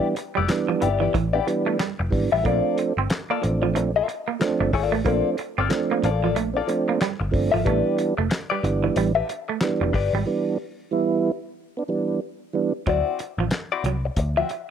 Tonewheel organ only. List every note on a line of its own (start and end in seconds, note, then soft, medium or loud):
0.00 0.15 E3 medium
0.00 0.15 G3 medium
0.00 0.15 B3 medium
0.00 0.16 D4 loud
0.48 0.88 E3 medium
0.48 0.88 G3 medium
0.48 0.89 B3 medium
0.48 0.89 D4 medium
1.33 1.40 B3 medium
1.33 1.40 D4 loud
1.47 1.78 E3 medium
1.47 1.78 G3 medium
1.47 1.78 B3 medium
1.47 1.79 D4 loud
2.10 2.30 E3 medium
2.10 2.30 G3 medium
2.10 2.31 B3 medium
2.10 2.31 D4 loud
2.43 2.93 F3 loud
2.43 2.93 A3 medium
2.43 2.93 C4 medium
2.43 2.94 D4 loud
3.41 3.91 F3 medium
3.41 3.92 A3 medium
3.41 3.91 C4 medium
3.41 3.92 D4 medium
4.39 4.71 F3 medium
4.39 4.71 A3 medium
4.39 4.72 C4 medium
4.39 4.72 D4 loud
5.04 5.36 F3 medium
5.04 5.36 A3 medium
5.04 5.36 C4 medium
5.04 5.37 D4 loud
5.69 6.09 F3 medium
5.69 6.10 A3 medium
5.69 6.10 C4 medium
5.69 6.10 D4 loud
6.54 6.61 C4 medium
6.54 6.61 D4 loud
6.67 6.99 F3 medium
6.67 6.99 A3 medium
6.67 6.99 C4 medium
6.67 7.00 D4 loud
7.31 7.51 F3 medium
7.31 7.51 A3 medium
7.31 7.51 C4 medium
7.31 7.52 D4 loud
7.64 8.14 E3 loud
7.64 8.14 G3 medium
7.64 8.14 B3 medium
7.64 8.15 D4 loud
8.63 9.12 E3 medium
8.63 9.12 G3 medium
8.63 9.12 B3 medium
8.63 9.13 D4 medium
9.61 9.92 E3 medium
9.61 9.93 G3 medium
9.61 9.93 B3 medium
9.61 9.93 D4 medium
10.26 10.57 E3 loud
10.26 10.58 G3 medium
10.26 10.58 B3 medium
10.26 10.58 D4 loud
10.91 11.31 E3 medium
10.91 11.31 G3 medium
10.91 11.31 B3 medium
10.91 11.32 E4 loud
11.77 11.83 B3 medium
11.77 11.84 D4 loud
11.88 12.20 E3 medium
11.88 12.20 G3 medium
11.88 12.20 B3 medium
11.88 12.21 D4 medium
12.53 12.72 E3 loud
12.53 12.73 G3 medium
12.53 12.73 B3 medium
12.53 12.73 D4 loud